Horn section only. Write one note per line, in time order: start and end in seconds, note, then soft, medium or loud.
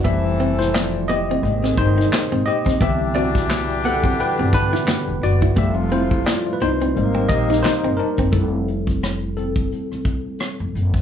0.05 1.06 E3 medium
0.05 1.06 A3 medium
0.05 1.06 C4 medium
0.05 1.06 A4 medium
1.43 2.45 D#3 medium
1.43 2.45 G#3 medium
1.43 2.44 C4 medium
1.43 2.45 G#4 medium
2.81 5.18 E3 medium
2.81 5.18 G3 medium
2.81 5.18 D4 medium
2.81 5.18 G4 medium
5.57 6.58 C3 medium
5.57 6.58 F3 medium
5.57 6.58 A3 medium
5.57 6.58 F4 medium
6.95 7.96 C3 medium
6.95 7.96 D#3 medium
6.95 7.96 A#3 medium
6.95 7.96 D#4 medium